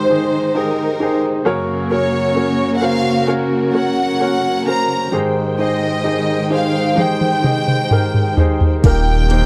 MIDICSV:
0, 0, Header, 1, 6, 480
1, 0, Start_track
1, 0, Key_signature, -4, "major"
1, 0, Tempo, 910470
1, 772, Time_signature, 4, 2, 24, 8
1, 2212, Tempo, 927357
1, 4936, End_track
2, 0, Start_track
2, 0, Title_t, "Violin section"
2, 0, Program_c, 0, 48
2, 0, Note_on_c, 0, 72, 70
2, 300, Note_off_c, 0, 72, 0
2, 304, Note_on_c, 0, 70, 56
2, 658, Note_off_c, 0, 70, 0
2, 1017, Note_on_c, 0, 73, 64
2, 1437, Note_off_c, 0, 73, 0
2, 1460, Note_on_c, 0, 78, 58
2, 1494, Note_off_c, 0, 78, 0
2, 1498, Note_on_c, 0, 77, 75
2, 1734, Note_off_c, 0, 77, 0
2, 1976, Note_on_c, 0, 78, 64
2, 2434, Note_off_c, 0, 78, 0
2, 2457, Note_on_c, 0, 82, 74
2, 2694, Note_off_c, 0, 82, 0
2, 2942, Note_on_c, 0, 75, 63
2, 3394, Note_off_c, 0, 75, 0
2, 3425, Note_on_c, 0, 77, 68
2, 3658, Note_off_c, 0, 77, 0
2, 3664, Note_on_c, 0, 79, 62
2, 4381, Note_off_c, 0, 79, 0
2, 4626, Note_on_c, 0, 79, 74
2, 4936, Note_off_c, 0, 79, 0
2, 4936, End_track
3, 0, Start_track
3, 0, Title_t, "Upright piano"
3, 0, Program_c, 1, 0
3, 0, Control_c, 1, 64, 127
3, 0, Note_on_c, 1, 44, 51
3, 0, Note_on_c, 1, 51, 53
3, 0, Note_on_c, 1, 63, 64
3, 0, Note_on_c, 1, 67, 61
3, 0, Note_on_c, 1, 68, 60
3, 0, Note_on_c, 1, 70, 57
3, 0, Note_on_c, 1, 72, 66
3, 48, Note_off_c, 1, 63, 0
3, 48, Note_on_c, 1, 63, 54
3, 51, Note_off_c, 1, 67, 0
3, 51, Note_on_c, 1, 67, 48
3, 54, Note_off_c, 1, 68, 0
3, 54, Note_on_c, 1, 68, 48
3, 57, Note_off_c, 1, 72, 0
3, 57, Note_on_c, 1, 72, 57
3, 278, Note_off_c, 1, 63, 0
3, 280, Note_off_c, 1, 67, 0
3, 281, Note_off_c, 1, 68, 0
3, 283, Note_off_c, 1, 72, 0
3, 288, Note_on_c, 1, 63, 50
3, 291, Note_on_c, 1, 67, 50
3, 295, Note_on_c, 1, 68, 45
3, 298, Note_on_c, 1, 75, 61
3, 518, Note_off_c, 1, 63, 0
3, 520, Note_off_c, 1, 67, 0
3, 522, Note_off_c, 1, 68, 0
3, 523, Note_off_c, 1, 75, 0
3, 527, Note_on_c, 1, 63, 56
3, 528, Note_on_c, 1, 67, 49
3, 532, Note_on_c, 1, 68, 50
3, 538, Note_on_c, 1, 72, 57
3, 749, Note_off_c, 1, 44, 0
3, 750, Note_off_c, 1, 51, 0
3, 758, Note_off_c, 1, 63, 0
3, 758, Note_off_c, 1, 67, 0
3, 760, Note_off_c, 1, 68, 0
3, 763, Note_off_c, 1, 72, 0
3, 764, Note_on_c, 1, 61, 79
3, 767, Note_on_c, 1, 49, 58
3, 767, Note_on_c, 1, 66, 76
3, 768, Note_on_c, 1, 42, 57
3, 769, Note_off_c, 1, 70, 0
3, 769, Note_on_c, 1, 70, 76
3, 774, Note_on_c, 1, 73, 92
3, 780, Control_c, 1, 64, 0
3, 865, Control_c, 1, 64, 127
3, 995, Note_off_c, 1, 61, 0
3, 998, Note_off_c, 1, 66, 0
3, 999, Note_off_c, 1, 70, 0
3, 1001, Note_off_c, 1, 73, 0
3, 1003, Note_on_c, 1, 61, 53
3, 1007, Note_on_c, 1, 66, 51
3, 1008, Note_on_c, 1, 70, 50
3, 1011, Note_on_c, 1, 73, 59
3, 1230, Note_off_c, 1, 61, 0
3, 1233, Note_off_c, 1, 66, 0
3, 1236, Note_off_c, 1, 70, 0
3, 1238, Note_on_c, 1, 61, 50
3, 1240, Note_off_c, 1, 73, 0
3, 1241, Note_on_c, 1, 66, 44
3, 1244, Note_on_c, 1, 70, 44
3, 1250, Note_on_c, 1, 73, 54
3, 1472, Note_off_c, 1, 61, 0
3, 1475, Note_off_c, 1, 66, 0
3, 1476, Note_off_c, 1, 70, 0
3, 1479, Note_off_c, 1, 73, 0
3, 1480, Note_on_c, 1, 61, 51
3, 1484, Note_on_c, 1, 66, 48
3, 1485, Note_on_c, 1, 70, 49
3, 1491, Note_on_c, 1, 72, 58
3, 1714, Note_off_c, 1, 61, 0
3, 1715, Note_off_c, 1, 66, 0
3, 1716, Note_off_c, 1, 70, 0
3, 1719, Note_off_c, 1, 72, 0
3, 1724, Note_on_c, 1, 61, 67
3, 1727, Note_on_c, 1, 66, 59
3, 1728, Note_on_c, 1, 70, 63
3, 1735, Note_on_c, 1, 73, 69
3, 1956, Note_off_c, 1, 61, 0
3, 1957, Note_off_c, 1, 66, 0
3, 1958, Note_off_c, 1, 70, 0
3, 1961, Note_off_c, 1, 73, 0
3, 1966, Note_on_c, 1, 61, 52
3, 1970, Note_on_c, 1, 66, 49
3, 1974, Note_on_c, 1, 70, 45
3, 1976, Note_on_c, 1, 73, 62
3, 2199, Note_off_c, 1, 61, 0
3, 2201, Note_off_c, 1, 66, 0
3, 2202, Note_off_c, 1, 70, 0
3, 2204, Note_off_c, 1, 73, 0
3, 2213, Note_on_c, 1, 61, 49
3, 2216, Note_on_c, 1, 66, 46
3, 2220, Note_on_c, 1, 70, 44
3, 2224, Note_on_c, 1, 73, 57
3, 2440, Note_off_c, 1, 61, 0
3, 2442, Note_off_c, 1, 66, 0
3, 2443, Note_off_c, 1, 70, 0
3, 2445, Note_off_c, 1, 73, 0
3, 2450, Note_on_c, 1, 61, 49
3, 2455, Note_on_c, 1, 66, 45
3, 2460, Note_on_c, 1, 70, 48
3, 2464, Note_on_c, 1, 72, 54
3, 2668, Note_off_c, 1, 49, 0
3, 2669, Note_off_c, 1, 42, 0
3, 2679, Note_off_c, 1, 61, 0
3, 2681, Note_off_c, 1, 66, 0
3, 2683, Note_off_c, 1, 70, 0
3, 2686, Note_off_c, 1, 72, 0
3, 2690, Note_on_c, 1, 63, 66
3, 2692, Note_on_c, 1, 51, 43
3, 2693, Note_on_c, 1, 67, 61
3, 2694, Note_on_c, 1, 44, 44
3, 2695, Note_on_c, 1, 68, 58
3, 2697, Control_c, 1, 64, 0
3, 2698, Note_on_c, 1, 72, 69
3, 2776, Control_c, 1, 64, 127
3, 2919, Note_off_c, 1, 63, 0
3, 2920, Note_off_c, 1, 67, 0
3, 2921, Note_off_c, 1, 68, 0
3, 2923, Note_off_c, 1, 72, 0
3, 2931, Note_on_c, 1, 63, 51
3, 2933, Note_on_c, 1, 67, 45
3, 2936, Note_on_c, 1, 68, 48
3, 2939, Note_on_c, 1, 72, 56
3, 3158, Note_off_c, 1, 63, 0
3, 3159, Note_off_c, 1, 67, 0
3, 3161, Note_off_c, 1, 68, 0
3, 3162, Note_off_c, 1, 72, 0
3, 3166, Note_on_c, 1, 63, 48
3, 3170, Note_on_c, 1, 67, 43
3, 3174, Note_on_c, 1, 68, 45
3, 3178, Note_on_c, 1, 75, 51
3, 3396, Note_off_c, 1, 63, 0
3, 3397, Note_off_c, 1, 67, 0
3, 3399, Note_off_c, 1, 68, 0
3, 3401, Note_off_c, 1, 75, 0
3, 3405, Note_on_c, 1, 63, 47
3, 3408, Note_on_c, 1, 67, 45
3, 3413, Note_on_c, 1, 68, 46
3, 3415, Note_on_c, 1, 72, 57
3, 3634, Note_off_c, 1, 63, 0
3, 3637, Note_off_c, 1, 67, 0
3, 3639, Note_off_c, 1, 68, 0
3, 3640, Note_off_c, 1, 72, 0
3, 3642, Note_on_c, 1, 63, 65
3, 3646, Note_on_c, 1, 67, 55
3, 3648, Note_on_c, 1, 68, 57
3, 3653, Note_on_c, 1, 72, 66
3, 3875, Note_off_c, 1, 63, 0
3, 3877, Note_off_c, 1, 67, 0
3, 3878, Note_off_c, 1, 68, 0
3, 3880, Note_off_c, 1, 72, 0
3, 3888, Note_on_c, 1, 63, 51
3, 3892, Note_on_c, 1, 67, 44
3, 3895, Note_on_c, 1, 68, 44
3, 3899, Note_on_c, 1, 75, 52
3, 4119, Note_off_c, 1, 63, 0
3, 4121, Note_off_c, 1, 67, 0
3, 4123, Note_off_c, 1, 68, 0
3, 4125, Note_off_c, 1, 75, 0
3, 4133, Note_on_c, 1, 63, 45
3, 4135, Note_on_c, 1, 67, 42
3, 4139, Note_on_c, 1, 68, 43
3, 4142, Note_on_c, 1, 70, 53
3, 4362, Note_off_c, 1, 63, 0
3, 4363, Note_off_c, 1, 67, 0
3, 4366, Note_off_c, 1, 68, 0
3, 4367, Note_off_c, 1, 70, 0
3, 4372, Note_on_c, 1, 63, 55
3, 4376, Note_on_c, 1, 67, 49
3, 4380, Note_on_c, 1, 68, 51
3, 4383, Note_on_c, 1, 72, 60
3, 4594, Note_off_c, 1, 51, 0
3, 4595, Note_off_c, 1, 44, 0
3, 4601, Note_off_c, 1, 63, 0
3, 4604, Note_off_c, 1, 67, 0
3, 4605, Note_off_c, 1, 68, 0
3, 4607, Note_off_c, 1, 72, 0
3, 4616, Note_on_c, 1, 58, 68
3, 4618, Note_on_c, 1, 46, 52
3, 4618, Note_on_c, 1, 63, 62
3, 4622, Control_c, 1, 64, 0
3, 4623, Note_on_c, 1, 67, 70
3, 4625, Note_on_c, 1, 70, 78
3, 4719, Control_c, 1, 64, 127
3, 4839, Note_off_c, 1, 58, 0
3, 4844, Note_off_c, 1, 63, 0
3, 4847, Note_off_c, 1, 67, 0
3, 4847, Note_on_c, 1, 58, 59
3, 4848, Note_off_c, 1, 70, 0
3, 4854, Note_on_c, 1, 63, 54
3, 4857, Note_on_c, 1, 67, 52
3, 4860, Note_on_c, 1, 72, 63
3, 4936, Note_off_c, 1, 46, 0
3, 4936, Note_off_c, 1, 58, 0
3, 4936, Note_off_c, 1, 63, 0
3, 4936, Note_off_c, 1, 67, 0
3, 4936, Note_off_c, 1, 72, 0
3, 4936, End_track
4, 0, Start_track
4, 0, Title_t, "String section"
4, 0, Program_c, 2, 48
4, 0, Note_on_c, 2, 51, 55
4, 0, Note_on_c, 2, 56, 48
4, 0, Note_on_c, 2, 63, 49
4, 0, Note_on_c, 2, 72, 57
4, 750, Note_off_c, 2, 51, 0
4, 750, Note_off_c, 2, 72, 0
4, 751, Note_off_c, 2, 56, 0
4, 763, Note_off_c, 2, 63, 0
4, 763, Note_on_c, 2, 58, 51
4, 763, Note_on_c, 2, 66, 56
4, 764, Note_on_c, 2, 49, 57
4, 765, Note_on_c, 2, 70, 62
4, 2668, Note_off_c, 2, 49, 0
4, 2668, Note_off_c, 2, 58, 0
4, 2668, Note_off_c, 2, 66, 0
4, 2669, Note_off_c, 2, 70, 0
4, 2696, Note_on_c, 2, 79, 49
4, 2697, Note_on_c, 2, 51, 52
4, 2697, Note_on_c, 2, 72, 58
4, 2698, Note_on_c, 2, 56, 49
4, 4598, Note_off_c, 2, 51, 0
4, 4598, Note_off_c, 2, 72, 0
4, 4598, Note_off_c, 2, 79, 0
4, 4599, Note_off_c, 2, 56, 0
4, 4610, Note_on_c, 2, 55, 51
4, 4610, Note_on_c, 2, 58, 55
4, 4611, Note_on_c, 2, 51, 55
4, 4611, Note_on_c, 2, 67, 64
4, 4936, Note_off_c, 2, 51, 0
4, 4936, Note_off_c, 2, 55, 0
4, 4936, Note_off_c, 2, 58, 0
4, 4936, Note_off_c, 2, 67, 0
4, 4936, End_track
5, 0, Start_track
5, 0, Title_t, "Sub bass"
5, 0, Program_c, 3, 38
5, 4617, Note_on_c, 3, 27, 91
5, 4936, Note_off_c, 3, 27, 0
5, 4936, End_track
6, 0, Start_track
6, 0, Title_t, "Drums"
6, 3652, Note_on_c, 9, 48, 44
6, 3704, Note_off_c, 9, 48, 0
6, 3773, Note_on_c, 9, 48, 39
6, 3825, Note_off_c, 9, 48, 0
6, 3893, Note_on_c, 9, 47, 54
6, 3944, Note_off_c, 9, 47, 0
6, 4015, Note_on_c, 9, 47, 48
6, 4066, Note_off_c, 9, 47, 0
6, 4134, Note_on_c, 9, 45, 58
6, 4186, Note_off_c, 9, 45, 0
6, 4254, Note_on_c, 9, 45, 50
6, 4306, Note_off_c, 9, 45, 0
6, 4373, Note_on_c, 9, 43, 65
6, 4425, Note_off_c, 9, 43, 0
6, 4494, Note_on_c, 9, 43, 60
6, 4546, Note_off_c, 9, 43, 0
6, 4615, Note_on_c, 9, 36, 86
6, 4615, Note_on_c, 9, 42, 79
6, 4615, Note_on_c, 9, 49, 77
6, 4666, Note_off_c, 9, 42, 0
6, 4667, Note_off_c, 9, 36, 0
6, 4667, Note_off_c, 9, 49, 0
6, 4853, Note_on_c, 9, 42, 61
6, 4905, Note_off_c, 9, 42, 0
6, 4936, End_track
0, 0, End_of_file